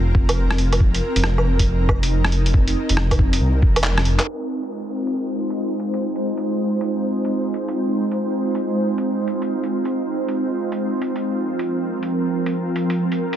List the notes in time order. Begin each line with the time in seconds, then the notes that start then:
Already playing: F1 C4 F4 A#4
0.15 kick
0.29 closed hi-hat, low woodblock
0.51 cross-stick
0.58 closed hi-hat
0.73 closed hi-hat, low woodblock
0.80 D#4, kick
0.94 closed hi-hat
1.16 F1, closed hi-hat
1.24 cross-stick
1.38 low woodblock
1.59 kick, closed hi-hat
1.89 kick, low woodblock
2.03 closed hi-hat
2.24 cross-stick
2.32 closed hi-hat
2.46 closed hi-hat
2.54 kick
2.68 closed hi-hat
2.89 F1, closed hi-hat
2.97 cross-stick
3.11 kick, closed hi-hat, low woodblock
3.19 kick
3.33 closed hi-hat
3.41 C2
3.62 F1, kick
3.76 closed hi-hat, low woodblock
3.84 clap
3.98 cross-stick
4.05 closed hi-hat
4.19 clap, closed hi-hat, low woodblock
4.28 G#3 C4 D#4 F4 C5
4.63 closed hi-hat
5.07 closed hi-hat
5.50 closed hi-hat
5.80 closed hi-hat
5.94 closed hi-hat
6.16 closed hi-hat
6.37 closed hi-hat
6.81 closed hi-hat
7.25 closed hi-hat
7.54 closed hi-hat
7.68 closed hi-hat
8.12 closed hi-hat
8.55 closed hi-hat
8.98 closed hi-hat
9.28 closed hi-hat
9.42 closed hi-hat
9.64 closed hi-hat
9.85 closed hi-hat
10.29 closed hi-hat
10.72 closed hi-hat
11.02 closed hi-hat
11.16 closed hi-hat
11.24 F3 A#4
11.59 closed hi-hat
12.03 closed hi-hat
12.46 closed hi-hat
12.76 closed hi-hat
12.90 closed hi-hat
13.12 closed hi-hat
13.33 closed hi-hat